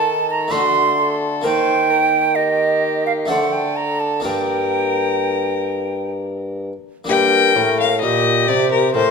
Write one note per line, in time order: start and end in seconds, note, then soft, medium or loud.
0.00 0.49 D#3 medium
0.00 0.47 A3 medium
0.00 0.48 D#4 medium
0.00 0.48 G4 medium
0.00 0.51 A4 loud
0.00 0.30 A5 loud
0.30 0.53 A#5 loud
0.48 1.39 A3 medium
0.48 1.40 D4 medium
0.48 1.41 F#4 medium
0.48 0.97 F#4 medium
0.48 1.16 C6 loud
0.52 1.42 D3 medium
0.52 1.40 D3 medium
0.98 1.46 A4 medium
1.42 3.32 D#3 medium
1.42 3.26 D#3 medium
1.42 3.25 A#3 medium
1.42 3.25 A#4 medium
1.42 1.92 C5 loud
1.42 2.37 G5 loud
1.90 2.37 A#4 medium
2.35 3.29 G4 medium
2.35 3.06 D#5 loud
3.06 3.12 F5 loud
3.26 4.19 A3 medium
3.26 4.20 D4 soft
3.26 4.21 C5 medium
3.26 3.54 F#5 loud
3.30 4.20 D3 medium
3.30 4.24 D3 medium
3.30 4.26 A4 medium
3.52 3.78 G5 medium
3.76 4.01 A#5 loud
4.00 4.24 A5 medium
4.20 7.03 A#3 medium
4.20 7.04 D4 medium
4.20 7.04 A#4 medium
4.24 6.72 G2 medium
4.24 6.62 A#4 medium
4.24 6.11 G5 loud
7.04 7.52 A#3 medium
7.04 7.52 D4 medium
7.04 9.11 G4 medium
7.04 7.98 A#4 loud
7.09 7.52 G2 medium
7.09 7.53 G2 loud
7.09 7.75 G5 loud
7.55 7.98 A2 medium
7.55 8.04 A2 medium
7.80 8.01 F5 loud
8.02 8.44 A#2 medium
8.02 8.48 A#2 medium
8.02 8.92 G4 loud
8.02 8.50 D#5 loud
8.48 8.91 C3 medium
8.48 8.94 C3 medium
8.48 8.71 D5 loud
8.72 8.94 A#4 loud
8.93 9.11 A2 medium
8.93 9.11 A#4 medium
8.93 9.11 C5 loud